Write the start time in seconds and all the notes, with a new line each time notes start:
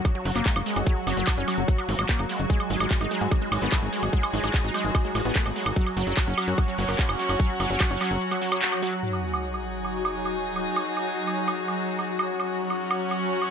Already playing: F#3 C#4 D#4 F#4 G#4 F#5 G#5 C#6 D#6
0.05 kick, closed hi-hat, high woodblock
0.15 F#3, closed hi-hat
0.25 F#1 F#3, open hi-hat
0.36 F#1 A#3, clap, closed hi-hat, high woodblock
0.46 G#3, kick, clap, closed hi-hat
0.56 F#1, closed hi-hat, high woodblock
0.66 G#3, open hi-hat
0.76 F#1, closed hi-hat, high woodblock
0.87 F#3, kick, closed hi-hat
0.97 closed hi-hat
1.07 F#1 F#3, open hi-hat, high woodblock
1.17 F#1 F#3, closed hi-hat
1.27 F#3, kick, clap, closed hi-hat, high woodblock
1.38 F#1 C#4, closed hi-hat
1.48 F#3, open hi-hat, high woodblock
1.58 F#1, closed hi-hat
1.68 kick, closed hi-hat
1.78 F#3, closed hi-hat, high woodblock
1.89 G#1 F3, open hi-hat
1.99 G#1 F#3, closed hi-hat, high woodblock
2.09 A#3, kick, clap, closed hi-hat
2.19 F#1, closed hi-hat, high woodblock
2.29 G#3, open hi-hat
2.40 F#1, closed hi-hat
2.50 G#3 D#4, kick, closed hi-hat
2.60 closed hi-hat, high woodblock
2.65 D#6
2.70 G#1 G#3 G#4 G#5, open hi-hat
2.80 G#1 G#3, closed hi-hat, high woodblock
2.91 G#3, kick, clap, closed hi-hat
3.01 G#1 D#4, closed hi-hat, high woodblock
3.11 G#3, open hi-hat
3.21 G#2, closed hi-hat
3.31 B3, kick, closed hi-hat, high woodblock
3.42 G#3, closed hi-hat
3.52 G#1 G#3 B3, open hi-hat, high woodblock
3.62 G#1 B3, clap, closed hi-hat
3.72 A3, kick, clap, closed hi-hat, high woodblock
3.82 G#1, closed hi-hat
3.93 G#3, open hi-hat
4.03 G#1, closed hi-hat, high woodblock
4.13 G#3, kick, closed hi-hat
4.23 closed hi-hat, high woodblock
4.33 G#1 G#3 D#4, open hi-hat
4.44 G#1 G#3 D#4, closed hi-hat, high woodblock
4.54 G#3, kick, clap, closed hi-hat
4.64 G#1 D#4, closed hi-hat
4.74 G#3, open hi-hat, high woodblock
4.84 G#1, closed hi-hat
4.95 kick, closed hi-hat, high woodblock
5.05 G#3, closed hi-hat
5.15 A1 G#3, open hi-hat, high woodblock
5.25 A1 B3, closed hi-hat
5.36 A3, kick, clap, closed hi-hat
5.46 G#1, closed hi-hat, high woodblock
5.56 G#3, open hi-hat
5.66 G#1, closed hi-hat, high woodblock
5.76 F#3 C#4, kick, closed hi-hat
5.87 closed hi-hat, high woodblock
5.97 F#1 F#3 F#4 C#6, open hi-hat
6.02 F#5
6.07 F#1 F#3, closed hi-hat
6.17 F#3, kick, clap, closed hi-hat, high woodblock
6.27 F#1 C#4, closed hi-hat
6.38 F#3, open hi-hat, high woodblock
6.48 F#2, closed hi-hat
6.58 kick, closed hi-hat, high woodblock
6.68 F#3, closed hi-hat
6.78 F#1 F#3, open hi-hat
6.89 F#1 A#3, clap, closed hi-hat, high woodblock
6.99 G#3, kick, clap, closed hi-hat
7.09 F#1, closed hi-hat, high woodblock
7.19 F#3, open hi-hat
7.29 F#1, closed hi-hat, high woodblock
7.40 F#3, kick, closed hi-hat
7.50 closed hi-hat
7.60 F#1 F#3, open hi-hat, high woodblock
7.70 F#1 F#3, closed hi-hat
7.80 F#3, kick, clap, closed hi-hat, high woodblock
7.91 F#1 C#4, closed hi-hat
8.01 F#3, clap, open hi-hat, high woodblock
8.11 F#1, closed hi-hat
8.21 closed hi-hat
8.31 F#3, closed hi-hat, high woodblock
8.42 F#3, open hi-hat
8.52 F#3, closed hi-hat, high woodblock
8.62 F#3, clap, closed hi-hat
8.72 closed hi-hat, high woodblock
8.82 F#3, open hi-hat
8.93 closed hi-hat
9.03 F#3 D#4 F#4, sub drop
9.10 D#6, high woodblock
9.15 G#5
9.23 G#4
9.34 high woodblock
9.54 high woodblock
9.85 high woodblock
10.05 high woodblock
10.25 high woodblock
10.56 high woodblock
10.76 high woodblock
10.97 high woodblock
11.27 high woodblock
11.48 high woodblock
11.68 high woodblock
11.99 high woodblock
12.19 high woodblock
12.29 C#4, riser
12.35 F#5
12.40 F#4, high woodblock
12.70 high woodblock
12.80 C#6
12.91 high woodblock
13.11 high woodblock
13.42 high woodblock